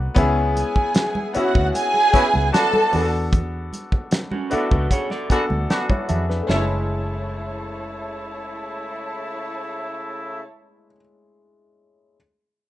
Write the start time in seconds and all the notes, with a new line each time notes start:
Already playing: B3 D4 F#4 A4 A#4 B4
0.15 C#2 B3 C#4 E4 G#4, kick, closed hi-hat, muted conga, low conga
0.56 G#4 G#5, closed hi-hat, high conga
0.76 muted fingered electric bass stroke, kick
0.94 snare, closed hi-hat, muted conga
1.15 muted conga, high conga
1.34 B3 C#4 E4 F#4 F#5, muted fingered electric bass stroke, closed hi-hat
1.55 D2, kick
1.74 G#4 G#5, closed hi-hat, muted conga
1.94 muted conga
2.13 B3 C#4 E4 B4, muted fingered electric bass stroke, kick, closed hi-hat
2.34 C#2, high conga
2.53 B3 D4 F#4 A4 A5, snare, closed hi-hat
2.73 muted conga, high conga
2.92 E2 B3 D4 F#4 G#4, open hi-hat, low conga
3.02 A4
3.33 kick, closed hi-hat, muted conga, low conga
3.73 closed hi-hat, high conga
3.92 muted fingered electric bass stroke, kick
4.11 snare, closed hi-hat, muted conga
4.31 C#4 F#4, muted conga, high conga
4.49 B3 D4 E4 F#4 A4 E5, muted fingered electric bass stroke, closed hi-hat
4.71 C#2 F#4 B4, kick
4.91 G#4 C#5 F#5, kick, closed hi-hat
5.10 A4 D5, snare, muted conga
5.29 B3 D4 F#4 A4 G#5, muted fingered electric bass stroke, kick, closed hi-hat
5.50 D2, high conga
5.70 B3 D4 F#4 A5, snare, closed hi-hat
5.90 E4 C#5, kick, muted conga, high conga
6.09 F2 G#4 E5 A5, closed hi-hat, low conga
6.29 D4 B4, snare
6.42 A3
6.47 F#1 C#3 A3 C#4 E4 C#5 A5, snare, high conga
6.51 E4
6.56 G#3